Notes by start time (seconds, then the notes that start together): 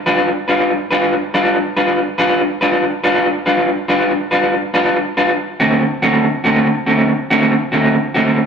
0.06 G3 D4 F4 B4
0.48 G3 D4 F4 B4
0.91 G3 D4 F4 B4
1.34 G3 D4 F4 B4
1.77 G3 D4 F4 B4
2.18 G3 D4 F4 B4
2.61 G3 D4 F4 B4
3.04 G3 D4 F4 B4
3.46 G3 D4 F4 B4
3.88 G3 D4 F4 B4
4.31 G3 D4 F4 B4
4.74 G3 D4 F4 B4
5.17 G3 D4 F4 B4
5.60 D3 A3 C4 F#4
6.02 D3 A3 C4 F#4
6.44 D3 A3 C4 F#4
6.86 D3 A3 C4 F#4
7.30 D3 A3 C4 F#4
7.72 D3 A3 C4 F#4
8.14 D3 A3 C4 F#4